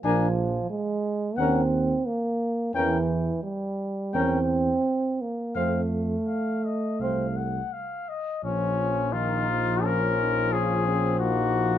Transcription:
0.04 tuba A#1, euphonium F3, french horn D4, flugelhorn A#4, trumpet G#5
0.70 euphonium G#3
1.37 tuba D#2, euphonium C4, french horn C#4, flugelhorn A#4, trumpet F#5
2.07 euphonium A#3
2.74 tuba E2, euphonium E3, french horn C#4, flugelhorn A#4, trumpet G5
3.43 euphonium G3
4.13 tuba E2, euphonium C4, french horn C#4, flugelhorn A#4, trumpet G5
5.21 euphonium A#3
5.55 tuba F2, euphonium A3, french horn C4, flugelhorn C5, trumpet F5
6.27 trumpet F5
6.65 trumpet D#5
7.00 tuba C2, french horn C4, flugelhorn C5, trumpet F5
7.37 trumpet F#5
7.73 trumpet F5
8.09 trumpet D#5
8.44 tuba A#1, french horn F3, trumpet C#4, flugelhorn C#4
9.13 french horn D#3, flugelhorn D#4, trumpet F4
9.49 french horn F3
9.84 euphonium C#4, flugelhorn C#4, trumpet A#4
10.20 euphonium D#4
10.52 flugelhorn C#4, euphonium F4, trumpet G#4
10.86 flugelhorn C4, euphonium C#4
11.19 flugelhorn A#3, euphonium D#4, trumpet F#4

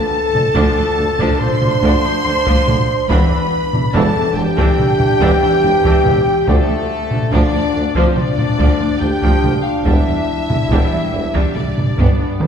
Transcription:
Already playing: trombone section F3 D4, french horn section A4, violin section A5
0.35 cello section D2, viola section F3 D4, taiko low-mid
0.55 double bass section D2, cello section D2, tuba D2, viola section F3 D4, taiko
0.76 cello section D2, viola section F3 D4
0.98 double bass section D2, cello section D2, tuba D2, viola section F3 D4
1.19 cello section D2, viola section F3 D4, taiko
1.38 french horn section C5, violin section C6, taiko low-mid
1.61 cello section D2, viola section F3 D4, taiko low-mid
1.81 double bass section D2, cello section D2, tuba D2, viola section F3 D4, taiko
2.04 cello section D2, viola section F3 D4
2.25 cello section D2, double bass section D2, tuba D2, viola section F3 D4
2.46 cello section D2, viola section F3 D4, taiko
2.67 cello section D2, double bass section D2, tuba D2, viola section F3 D4, taiko low-mid
3.08 double bass section E1, tuba E1, cello section E2, viola section E3 D4, trombone section E3 D4, french horn section B4, violin section B5, taiko
3.30 cello section E2, viola section E3 D4
3.73 cello section E2, viola section E3 D4, taiko low-mid
3.93 double bass section E1, tuba E1, cello section E2, viola section E3 D4, french horn section A4, violin section A5, taiko
4.15 cello section E2, viola section E3 D4
4.35 double bass section E1, tuba E1, cello section E2, viola section E3 D4, french horn section G4, violin section G5
4.57 cello section E2, viola section E3 D4, taiko
4.79 taiko low-mid
4.99 cello section E2, viola section E3 D4, taiko low-mid
5.20 double bass section E1, tuba E1, cello section E2, viola section E3 D4, taiko
5.42 cello section E2, viola section E3 D4
5.62 double bass section E1, tuba E1, cello section E2, viola section E3 D4
5.83 cello section E2, viola section E3 D4, taiko
6.04 double bass section E1, tuba E1, cello section E2, viola section E3 D4, taiko low-mid
6.47 cello section D2, double bass section D2, tuba D2, viola section F3 D4, trombone section F3 D4, french horn section A3, violin section A4, taiko
6.68 cello section D2, viola section F3 D4
7.11 cello section D2, viola section F3 D4, taiko low-mid
7.32 cello section D2, double bass section D2, tuba D2, viola section F3 D4, french horn section D4, violin section D5, taiko
7.53 cello section D2, viola section F3 D4
7.74 double bass section D2, cello section D2, tuba D2, viola section F3 D4
7.95 cello section D2, viola section F3 D4, french horn section C4, violin section C5, taiko
8.16 french horn section D4, violin section D5, taiko low-mid
8.37 cello section D2, viola section F3 D4, taiko low-mid
8.58 cello section D2, double bass section D2, tuba D2, viola section F3 D4, taiko
8.80 cello section D2, viola section F3 D4
9.00 double bass section D2, cello section D2, tuba D2, viola section F3 D4, french horn section G4, violin section G5
9.22 cello section D2, viola section F3 D4, taiko
9.43 double bass section D2, cello section D2, tuba D2, viola section F3 D4, taiko low-mid
9.63 french horn section F4, violin section F5
9.85 double bass section E1, tuba E1, cello section E2, viola section G3 D4, trombone section G3, french horn section E4, violin section E5, taiko
10.07 cello section E2, viola section G3 D4
10.50 cello section E2, viola section G3 D4, taiko low-mid
10.70 double bass section E1, tuba E1, cello section E2, viola section G3 D4, taiko
10.92 cello section E2, viola section G3 D4
11.12 double bass section E1, tuba E1, cello section E2, viola section G3 D4
11.34 cello section E2, viola section G3 D4, taiko
11.55 trombone section B3, french horn section D4, violin section D5, taiko low-mid
11.76 cello section G2, viola section B3 D4, taiko low-mid
11.97 double bass section G1, tuba G1, cello section G2, viola section B3 D4, taiko
12.19 cello section G2, viola section B3 D4
12.40 double bass section G1, tuba G1, cello section G2, viola section B3 D4, taiko mid

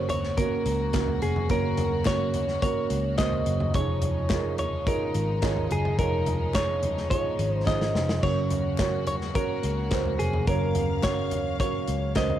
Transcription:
Already playing: picked electric bass F#1, upright piano C#3 A#3 C#4 F#4 A#4 C5, string section C#3 F#3 A#3 F#4
0.09 clean electric guitar C#5, closed hi-hat, floor tom
0.24 snare
0.37 upright piano A#3 C#4 F#4 C#5, clean electric guitar A#4, kick, closed hi-hat
0.66 picked electric bass C#2, closed hi-hat
0.93 upright piano A#3 C#4 F#4 A#4, kick, snare, clap, closed hi-hat
1.08 floor tom
1.22 picked electric bass F1, clean electric guitar G#4, closed hi-hat
1.36 floor tom
1.49 picked electric bass F#1, upright piano C#3 A#3 C#4 F#4 C#5, clean electric guitar A#4, kick, closed hi-hat
1.77 closed hi-hat, floor tom
2.05 upright piano A#3 C#4 F#4 A#4, clean electric guitar C#5, kick, snare, clap, closed hi-hat
2.34 closed hi-hat, floor tom
2.48 snare
2.62 upright piano A#3 C#4 F#4 A#4, clean electric guitar C#5, kick, closed hi-hat
2.90 picked electric bass C#2, closed hi-hat
3.18 upright piano A#3 C#4 F#4 C5, clean electric guitar D#5, kick, snare, clap, closed hi-hat
3.32 floor tom
3.46 picked electric bass F#1, closed hi-hat
3.60 floor tom
3.74 picked electric bass F1, string section F3 G#3 D#4, upright piano F3 D#4 F4 G#4 C#5, clean electric guitar C#5, kick, closed hi-hat
4.02 closed hi-hat, floor tom
4.30 upright piano D#4 F4 G#4 A#4, kick, snare, clap, closed hi-hat
4.58 clean electric guitar C#5, closed hi-hat, floor tom
4.87 upright piano D#4 F4 G#4 C#5, clean electric guitar A#4, kick, closed hi-hat
5.14 picked electric bass G#1, closed hi-hat
5.42 upright piano D#4 F4 G#4 C#5, kick, snare, clap, closed hi-hat
5.57 floor tom
5.71 picked electric bass F#1, clean electric guitar G#4, closed hi-hat
5.85 floor tom
5.99 picked electric bass F1, upright piano F3 D#4 F4 G#4 C#5, clean electric guitar A#4, kick, closed hi-hat
6.26 closed hi-hat, floor tom
6.54 upright piano D#4 F4 G#4 C#5, clean electric guitar C#5, kick, snare, clap, closed hi-hat
6.83 closed hi-hat, floor tom
6.97 snare
7.10 upright piano D#4 F4 G#4 C#5, clean electric guitar C#5, kick, closed hi-hat
7.39 picked electric bass G#1, closed hi-hat
7.52 clean electric guitar C5
7.66 upright piano D#4 F4 G#4 C5, clean electric guitar D#5, kick, snare, clap
7.81 snare
7.95 picked electric bass F1, snare
8.09 snare
8.22 picked electric bass F#1, upright piano C#3 C#4 F#4 A#4 C#5, string section F#3 A#3 F#4, clean electric guitar C#5, kick, splash
8.50 closed hi-hat, floor tom
8.78 upright piano C#4 F#4 A#4 C#5, kick, snare, clap, closed hi-hat
9.07 clean electric guitar C#5, closed hi-hat, floor tom
9.21 snare
9.33 upright piano C#4 F#4 A#4 C#5, clean electric guitar A#4, kick, closed hi-hat
9.63 picked electric bass C#2, closed hi-hat
9.91 upright piano C#4 F#4 A#4 C5, kick, snare, clap, closed hi-hat
10.06 floor tom
10.19 picked electric bass F1, clean electric guitar G#4, closed hi-hat
10.33 floor tom
10.47 picked electric bass F#1, upright piano C#3 C#4 F#4 A#4 C#5, clean electric guitar A#4, string section F5, kick, closed hi-hat
10.75 closed hi-hat, floor tom
11.03 upright piano C#4 F#4 A#4 C#5, clean electric guitar C#5, kick, snare, clap, closed hi-hat
11.31 closed hi-hat, floor tom
11.59 upright piano C#4 F#4 A#4 C#5, clean electric guitar C#5, kick, closed hi-hat
11.88 picked electric bass C#2, closed hi-hat
12.15 upright piano C#4 F#4 A#4 C5, clean electric guitar D#5, kick, snare, clap, closed hi-hat
12.30 floor tom

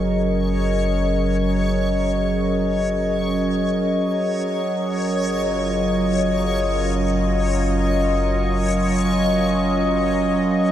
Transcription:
Already playing: analog synth bass F#1, analog synth pad F#3 C#4 G#4 A#4 D#5, synth texture C#5 C#6
0.22 analog synth pad D#5
4.39 analog synth bass F#1, analog synth pad F#3
5.37 analog synth pad F4

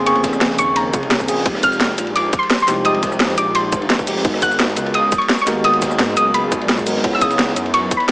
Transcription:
Already playing: detuned saw bass F1, tine electric piano C#3 A#3 C4 G#4, ambient pad F3 A#3
0.05 tine electric piano A#3 C4 C#4 G#4, synth pluck C#6, closed hi-hat, ride
0.15 ride
0.24 kick, snare, closed hi-hat, ride, shaker
0.33 cross-stick, shaker
0.41 detuned saw bass F1, snare, closed hi-hat, ride
0.50 snare
0.58 detuned saw bass D#2, synth pluck C#6, closed hi-hat, ride, shaker
0.76 synth pluck A#5, closed hi-hat, ride
0.93 detuned saw bass C2, kick, closed hi-hat, ride, shaker
1.03 ride
1.10 snare, closed hi-hat, ride
1.20 kick, shaker
1.28 detuned saw bass A#1, tine electric piano C#3 A#3 C4 G#4, closed hi-hat, open hi-hat, shaker
1.38 snare
1.45 detuned saw bass F1, tine electric piano F3 G#3 D#4 G4, ambient pad D#4, kick, closed hi-hat, ride
1.55 cross-stick, snare
1.63 synth pluck F6, kick, closed hi-hat, ride, shaker
1.72 ride, shaker
1.80 snare, closed hi-hat, ride
1.90 snare
1.98 detuned saw bass A#1, cross-stick, closed hi-hat, ride, shaker
2.07 ride
2.16 synth pluck D6, closed hi-hat, ride
2.33 kick, closed hi-hat, ride, shaker
2.39 synth pluck C6
2.43 ride
2.50 snare, closed hi-hat, ride
2.60 synth pluck C6, shaker
2.67 detuned saw bass C2, tine electric piano F3 G#3 D#4 G4, snare, closed hi-hat, ride, shaker
2.84 tine electric piano F3 G#3 D#4 G4, synth pluck D#6, closed hi-hat, ride
2.94 ride
3.03 kick, snare, closed hi-hat, ride, shaker
3.12 cross-stick, shaker
3.20 detuned saw bass F2, snare, closed hi-hat, ride
3.29 snare
3.37 detuned saw bass A#1, synth pluck D6, closed hi-hat, ride, shaker
3.55 synth pluck C6, closed hi-hat, ride
3.72 detuned saw bass G1, kick, closed hi-hat, ride, shaker
3.82 ride
3.89 snare, closed hi-hat, ride
3.99 kick, shaker
4.07 detuned saw bass F1, tine electric piano F3 G#3 D#4 G4, closed hi-hat, open hi-hat, shaker
4.17 snare
4.24 detuned saw bass G#1, ambient pad F#3 G#3 G#4, tine electric piano G#3 B3 F#4 A#4, kick, closed hi-hat, ride
4.34 cross-stick, snare
4.42 synth pluck F#6, kick, closed hi-hat, ride, shaker
4.51 ride, shaker
4.60 snare, closed hi-hat, ride
4.69 snare
4.76 detuned saw bass C#2, cross-stick, closed hi-hat, ride, shaker
4.86 ride
4.94 synth pluck D#6, closed hi-hat, ride
5.12 kick, closed hi-hat, ride, shaker
5.18 synth pluck C#6, ride
5.29 snare, closed hi-hat, ride
5.38 synth pluck C#6, shaker
5.46 detuned saw bass D#2, tine electric piano G#3 B3 F#4 A#4, snare, closed hi-hat, ride, shaker
5.63 tine electric piano G#3 A#3 B3 F#4, synth pluck D#6, closed hi-hat, ride
5.73 ride
5.82 kick, snare, closed hi-hat, ride, shaker
5.91 cross-stick, shaker
5.99 detuned saw bass G#2, snare, closed hi-hat, ride
6.08 snare
6.17 detuned saw bass C#2, synth pluck D#6, closed hi-hat, ride, shaker
6.34 synth pluck B5, closed hi-hat, ride
6.52 detuned saw bass A#1, kick, closed hi-hat, ride, shaker
6.61 ride
6.69 snare, closed hi-hat, ride
6.78 kick, shaker
6.86 detuned saw bass G#1, tine electric piano G#3 B3 F#4 A#4, closed hi-hat, open hi-hat, shaker
6.96 snare
7.03 detuned saw bass C#2, ambient pad E3 B4 D#5, tine electric piano B3 D#4 E4 C#5, kick, closed hi-hat, ride
7.13 synth pluck E6, cross-stick, snare
7.21 synth pluck D#6, kick, closed hi-hat, ride, shaker
7.30 ride, shaker
7.39 snare, closed hi-hat, ride
7.47 snare
7.56 detuned saw bass F#2, cross-stick, closed hi-hat, ride, shaker
7.66 ride
7.74 synth pluck C#6, closed hi-hat, ride
7.91 kick, closed hi-hat, ride, shaker
7.97 synth pluck B5, ride
8.08 snare

